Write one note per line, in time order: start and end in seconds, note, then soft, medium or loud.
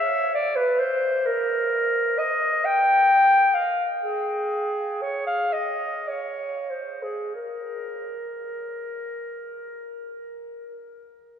0.00 0.33 E5 medium
0.35 0.58 D5 medium
0.56 0.80 B4 medium
0.79 1.28 C5 medium
1.26 2.20 A#4 medium
2.19 2.67 D#5 medium
2.65 3.56 G5 medium
3.54 3.89 F5 medium
4.03 5.03 G#4 medium
5.02 5.26 C#5 medium
5.27 5.55 F5 medium
5.53 6.10 D#5 medium
6.08 6.72 C#5 medium
6.70 7.04 C5 soft
7.03 7.34 G#4 soft
7.35 10.68 A#4 soft